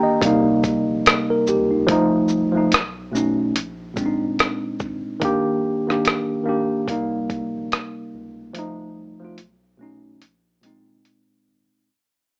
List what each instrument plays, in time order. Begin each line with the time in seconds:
Already playing: tine electric piano D#3 A#3 D4 G4 G5 A#5
0.03 tine electric piano D#5
0.22 sub bass C2, tine electric piano C3 G3 A#3, kick, closed hi-hat
0.27 tine electric piano D#4
0.64 kick, closed hi-hat, shaker
0.88 sub bass A#1
1.06 cross-stick, closed hi-hat
1.30 tine electric piano A#4
1.47 sub bass C#2, tine electric piano G4, shaker
1.71 tine electric piano D#4
1.86 sub bass C2, tine electric piano F3 A3, kick, closed hi-hat
1.91 tine electric piano D#4
2.28 shaker
2.52 sub bass C2, tine electric piano F3 A3
2.57 tine electric piano D#4
2.72 sub bass B1, cross-stick, closed hi-hat
3.12 tine electric piano B2 A3 C#4, shaker
3.17 tine electric piano D#4
3.55 sub bass A#1, closed hi-hat
3.94 tine electric piano A#2 G#3 C4, kick, closed hi-hat, shaker
3.99 tine electric piano D4
4.06 tine electric piano D#4
4.21 sub bass G1
4.39 cross-stick, closed hi-hat
4.80 sub bass G#1, kick, shaker
5.20 sub bass D#1, tine electric piano D#3 A#3 D4, kick, closed hi-hat
5.25 tine electric piano G4
5.87 sub bass D1, tine electric piano D#3 A#3 D4, cross-stick
5.92 tine electric piano G4
6.05 cross-stick, closed hi-hat
6.44 tine electric piano D#3 A#3 D4
6.49 tine electric piano G4
6.86 sub bass C2, tine electric piano C3 G3 A#3, kick, closed hi-hat
6.91 tine electric piano D#4
7.30 kick, closed hi-hat
7.54 sub bass A#1
7.72 cross-stick, closed hi-hat
8.14 sub bass C#2
8.53 sub bass C2, tine electric piano F3 A3, closed hi-hat
8.59 tine electric piano D#4
9.19 sub bass C2, tine electric piano F3 A3
9.24 tine electric piano F4
9.38 sub bass B1, closed hi-hat
9.77 tine electric piano B2 A3 C#4
9.82 tine electric piano D#4
10.22 sub bass A#1, closed hi-hat
10.61 tine electric piano A#2 G#3 C4, closed hi-hat
10.66 tine electric piano D#4
10.88 sub bass G1
11.05 closed hi-hat
11.47 sub bass G#1